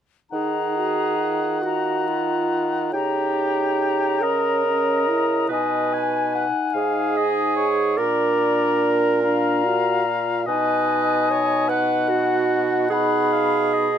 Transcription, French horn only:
0.32 0.78 D#4 soft
0.77 1.18 F#4 soft
1.19 2.95 F4 soft
2.93 4.24 D#4 soft
4.23 4.66 C#4 soft
4.66 5.09 C#4 soft
5.08 5.54 E4 soft
5.53 7.73 D#4 soft
7.99 9.20 D4 soft
9.24 9.66 D4 soft
9.64 10.07 F#4 soft
10.05 10.48 F4 soft
10.49 12.87 D#4 soft
12.91 13.88 D#4 soft

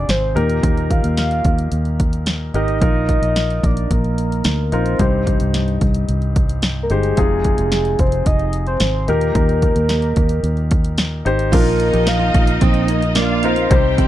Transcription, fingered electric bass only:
0.09 0.34 G#1 medium
0.36 0.61 D#2 medium
0.63 1.01 D#2 medium
1.04 1.42 D#2 medium
1.45 1.70 D#2 medium
1.72 2.50 D#2 medium
2.54 2.79 G#1 medium
2.82 3.19 A#1 medium
3.22 3.60 A#1 medium
3.63 3.88 A#1 medium
3.90 4.41 A#1 medium
4.45 4.70 D2 medium
4.72 4.97 A#1 medium
4.99 5.37 C2 medium
5.41 5.79 C2 medium
5.81 6.06 C2 medium
6.09 6.86 C2 medium
6.90 7.15 G1 medium
7.17 7.55 F1 medium
7.59 7.96 F1 medium
7.99 8.24 F1 medium
8.26 8.77 F1 medium
8.80 9.06 G#1 medium
9.08 9.33 D#2 medium
9.35 9.73 D#2 medium
9.76 10.14 D#2 medium
10.17 10.42 D#2 medium
10.43 11.21 D#2 medium
11.25 11.51 G#1 medium
11.53 11.91 A#1 loud
11.94 12.32 A#1 medium
12.34 12.60 A#1 medium
12.62 13.67 A#1 medium
13.71 14.08 C2 loud

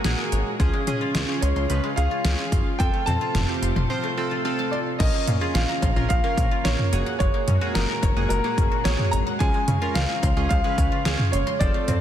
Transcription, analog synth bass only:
0.05 0.15 A#1 loud
0.32 0.42 G#1 loud
0.60 0.70 C#2 loud
0.87 0.98 C#3 loud
1.15 1.25 C#2 loud
1.42 1.53 C#2 loud
1.56 1.66 C#2 loud
1.70 1.80 C#2 loud
1.97 2.08 C#2 loud
2.25 2.35 C#2 loud
2.52 2.63 F#1 medium
2.80 2.90 F1 loud
3.07 3.18 F2 medium
3.35 3.45 F1 loud
3.62 3.73 F1 loud
3.76 3.86 F1 medium
5.00 5.10 A#1 loud
5.28 5.38 A#2 loud
5.55 5.65 A#1 loud
5.83 5.93 A#1 loud
5.96 6.07 A#1 medium
6.10 6.21 A#1 loud
6.38 6.48 A#1 loud
6.65 6.76 A#1 loud
6.93 7.03 F#1 loud
7.20 7.31 F#1 loud
7.48 7.58 F#2 loud
7.75 7.86 F#1 loud
8.03 8.13 F#1 loud
8.17 8.27 F#1 medium
8.30 8.41 F#1 loud
8.58 8.68 F#1 loud
8.85 8.96 A#1 loud
9.13 9.23 G#1 loud
9.40 9.51 C#2 loud
9.68 9.78 C#3 loud
9.96 10.06 C#2 loud
10.23 10.33 C#2 loud
10.37 10.47 C#2 loud
10.51 10.61 C#2 loud
10.78 10.88 C#2 loud
11.06 11.16 C#2 loud
11.33 11.43 F#1 medium
11.61 11.71 F1 loud
11.88 11.98 F2 medium

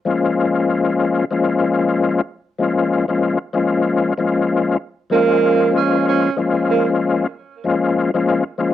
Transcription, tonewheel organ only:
0.05 1.24 F3 loud
0.05 1.24 G#3 medium
0.05 1.25 A#3 medium
0.05 1.25 C#4 loud
0.05 1.25 F4 loud
1.31 2.21 F3 medium
1.31 2.21 G#3 medium
1.31 2.21 A#3 medium
1.31 2.22 C#4 medium
1.31 2.22 F4 loud
2.58 3.05 F3 loud
2.58 3.05 G#3 medium
2.58 3.05 A#3 medium
2.58 3.06 C#4 medium
2.58 3.06 F4 loud
3.08 3.37 F3 loud
3.08 3.38 G#3 medium
3.08 3.38 A#3 medium
3.08 3.38 C#4 medium
3.08 3.39 F4 loud
3.53 4.13 F3 medium
3.53 4.13 G#3 medium
3.53 4.13 A#3 medium
3.53 4.14 C#4 medium
3.53 4.14 F4 loud
4.18 4.76 F3 loud
4.18 4.77 G#3 medium
4.18 4.77 A#3 medium
4.18 4.77 C#4 medium
4.18 4.78 F4 loud
5.10 6.29 F3 loud
5.10 6.29 G#3 medium
5.10 6.30 A#3 medium
5.10 6.30 C#4 medium
5.10 6.30 F4 loud
6.37 7.26 F3 medium
6.37 7.26 G#3 medium
6.37 7.27 A#3 medium
6.37 7.27 C#4 medium
6.37 7.27 F4 loud
7.64 8.10 F3 loud
7.64 8.11 G#3 medium
7.64 8.11 A#3 medium
7.64 8.11 C#4 medium
7.64 8.11 F4 loud
8.14 8.43 F3 medium
8.14 8.44 G#3 medium
8.14 8.44 A#3 medium
8.14 8.44 C#4 medium
8.14 8.44 F4 loud
8.58 8.74 F3 medium
8.58 8.74 G#3 medium
8.58 8.74 A#3 medium
8.58 8.74 C#4 medium
8.58 8.74 F4 loud

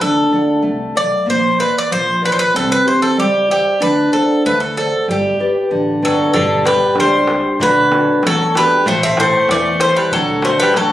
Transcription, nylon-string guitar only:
0.01 0.62 D4 medium
0.32 0.83 A4 soft
0.32 0.83 D5 soft
0.32 0.84 F#5 medium
0.62 1.25 A3 medium
0.95 1.21 A4 soft
0.95 1.21 D5 soft
0.95 1.21 F#5 soft
1.26 1.88 A#3 medium
1.59 2.10 A#4 soft
1.59 2.10 D5 soft
1.59 2.11 F5 medium
1.91 2.53 F3 medium
2.22 2.48 A#4 soft
2.22 2.48 D5 soft
2.22 2.48 F5 medium
2.54 3.16 C4 medium
2.86 3.37 G4 soft
2.86 3.37 C5 soft
2.86 3.37 E5 medium
3.17 3.79 G3 medium
3.49 3.74 G4 soft
3.49 3.75 C5 soft
3.49 3.75 E5 medium
3.80 4.42 D4 medium
4.12 4.63 C5 medium
4.12 4.63 D5 soft
4.12 4.63 F#5 medium
4.46 5.07 A3 medium
4.77 5.02 C5 soft
4.77 5.03 D5 soft
4.77 5.03 F#5 soft
5.09 5.39 G3 medium
5.39 5.90 G4 soft
5.39 5.90 B4 soft
5.39 5.91 D5 medium
5.71 6.32 D3 medium
6.02 6.28 B4 soft
6.02 6.28 D5 soft
6.02 6.28 G5 soft
6.34 6.94 G3 medium
6.64 7.15 G4 soft
6.64 7.16 D5 medium
6.95 7.57 D4 medium
7.28 7.54 G4 soft
7.28 7.54 D5 soft
7.60 8.22 D3 medium
7.91 8.42 D4 soft
7.91 8.42 F#4 soft
7.91 8.42 A4 medium
8.22 8.84 A3 medium
8.55 8.80 D4 soft
8.55 8.81 F#4 soft
8.55 8.81 A4 medium
8.86 9.47 A3 medium
9.17 9.68 E4 medium
9.17 9.68 A4 soft
9.17 9.68 C5 medium
9.51 10.11 E3 medium
9.80 10.06 E4 soft
9.80 10.06 A4 soft
9.80 10.06 C5 soft
10.12 10.73 D3 medium
10.43 10.92 D4 soft
10.43 10.92 F#4 soft
10.43 10.92 A4 medium
10.75 10.92 A3 medium

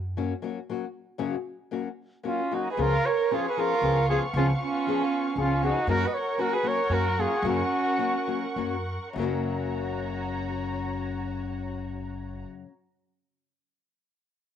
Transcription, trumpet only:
2.26 2.56 F4 medium
2.54 2.71 F#4 medium
2.71 2.83 B4 medium
2.81 3.07 A#4 loud
3.06 3.34 C#5 medium
3.32 3.48 G#4 medium
3.49 3.60 B4 medium
3.58 4.08 A#4 loud
4.09 4.20 G#4 medium
4.36 4.47 F4 medium
4.61 5.33 F4 medium
5.38 5.65 F4 medium
5.63 5.88 F#4 medium
5.89 6.08 A#4 loud
6.07 6.15 D#5 medium
6.14 6.41 C#5 medium
6.40 6.55 A#4 medium
6.54 6.69 B4 medium
6.68 6.95 C#5 medium
6.94 7.22 A#4 medium
7.20 7.45 G#4 medium
7.48 8.55 F#4 loud

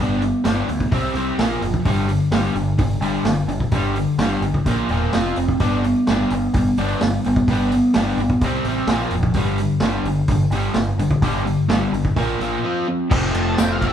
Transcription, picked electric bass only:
0.00 0.32 G1 medium
0.45 0.62 G1 medium
0.69 0.86 D2 medium
0.92 1.09 C2 medium
1.14 1.31 C2 medium
1.38 1.55 A#1 medium
1.62 1.79 F#1 medium
1.85 2.18 G1 medium
2.31 2.49 G1 medium
2.55 2.72 G1 medium
2.78 2.95 G1 medium
3.00 3.18 G1 medium
3.24 3.41 G1 medium
3.47 3.65 G1 medium
3.72 4.05 G1 medium
4.18 4.35 G1 medium
4.41 4.58 G1 medium
4.65 4.82 A#1 medium
4.89 5.06 E1 medium
5.15 5.31 F1 medium
5.37 5.53 F1 medium
5.60 5.93 G1 medium
6.08 6.24 G1 medium
6.31 6.47 G1 medium
6.53 6.70 G1 medium
6.78 6.94 G1 medium
7.02 7.18 G1 medium
7.27 7.42 G1 medium
7.48 7.80 G1 medium
7.96 8.12 G1 medium
8.17 8.34 G1 medium
8.41 8.58 C2 medium
8.64 8.81 A1 medium
8.87 9.04 A#1 medium
9.11 9.34 F1 medium
9.34 9.67 G1 medium
9.81 9.98 G1 medium
10.04 10.21 G1 medium
10.28 10.45 G1 medium
10.50 10.68 G1 medium
10.74 10.91 G1 medium
10.98 11.15 G1 medium
11.21 11.55 G1 medium
11.69 11.86 G1 medium
11.93 12.10 G1 medium
12.16 12.33 A#1 medium
12.39 12.56 A#1 medium
13.11 13.31 F1 medium
13.34 13.54 F1 medium
13.59 13.79 F1 medium
13.81 13.93 F1 medium

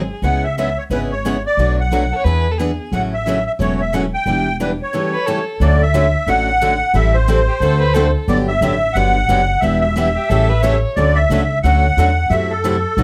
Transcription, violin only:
0.00 0.17 G#4 medium
2.12 2.17 A4 medium
2.17 2.25 C#5 medium
2.24 2.53 B4 medium
2.51 2.60 A4 medium
2.58 2.85 G#4 medium
5.13 5.27 B4 medium
5.26 5.60 A4 medium
7.48 7.60 G4 medium
7.61 7.80 A4 medium
7.80 7.96 B4 medium
7.94 8.22 A4 medium
10.15 10.30 G4 medium
10.29 10.51 A4 medium
10.49 10.64 B4 medium
10.63 10.90 C#5 medium

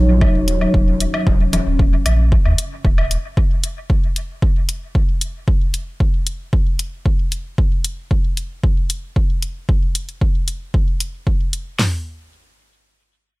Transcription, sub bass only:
0.00 0.27 A#1 medium
0.35 0.66 D#1 medium
0.74 1.06 D#1 medium
1.27 1.58 D#1 loud
1.67 1.98 D#1 medium
2.06 2.37 A#1 medium
2.45 2.53 D#2 medium
2.85 3.16 D#1 loud

